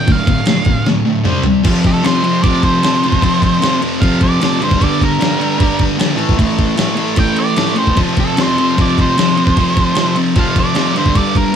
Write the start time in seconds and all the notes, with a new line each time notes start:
Already playing: G5
0.07 D2 A2, kick, crash
0.12 F5
0.27 D2 A2, kick, crash
0.46 D2 A2, snare, crash
0.65 D2 A2, kick, crash
0.86 D2 A2, snare
1.05 D2 A2
1.25 C3 G3 C4, mid tom
1.43 C3 G3, floor tom
1.63 F2 C3 F3, kick, crash
1.84 A4, kick, crash
2.03 F2 C3 F3 C5, snare, crash
2.22 F2 C3 F3, crash
2.43 F2 C3 F3 D5, kick, crash
2.63 C5, kick, crash
2.83 F2 C3 F3, snare, crash
2.95 snare
3.04 F2 C3 F3, crash
3.12 kick
3.21 F2 C3 F3, kick, crash
3.42 kick, crash
3.60 F2 C3 F3, snare, crash
3.81 F2 C3 F3, crash
4.01 F2 C3 F3 F5, kick, crash
4.21 D5, kick, crash
4.41 F2 C3 F3, snare, crash
4.61 G2 D3 G3 C5, crash
4.71 kick, snare
4.79 G2 D3 G3, kick, crash
4.84 D5
5.01 A#4, kick, crash
5.20 G2 D3 G3, snare, crash
5.38 G2 D3 G3, crash
5.58 G2 D3 G3, kick, crash
5.79 kick, crash
5.98 G2 D3 G3, snare, crash
6.16 A2 E3 A3, crash
6.29 kick, snare
6.37 A2 E3 A3, kick, crash
6.59 kick, crash
6.76 A2 E3 A3, snare, crash
6.96 A2 E3 A3, crash
7.16 A2 E3 A3 G5, kick, crash
7.36 D5, crash
7.57 A2 E3 A3, snare, crash
7.67 snare
7.75 A2 E3 A3 C5, crash
7.87 kick
7.96 F2 C3 F3, kick, crash
8.17 A4, kick, crash
8.37 F2 C3 F3, snare, crash
8.42 C5
8.57 F2 C3 F3, crash
8.76 F2 C3 F3, kick, crash
8.81 D5
8.98 C5, kick, crash
9.18 F2 C3 F3, snare, crash
9.29 snare
9.36 F2 C3 F3, crash
9.47 kick
9.57 F2 C3 F3, kick, crash
9.77 kick, crash
9.95 F2 C3 F3, snare, crash
10.16 F2 C3 F3, crash
10.36 F2 C3 F3 F5, kick, crash
10.56 D5, kick, crash
10.75 F2 C3 F3, snare, crash
10.87 snare
10.95 G2 D3 G3 C5, crash
11.06 kick
11.15 G2 D3 G3 D5, kick, crash
11.35 A#4, kick, crash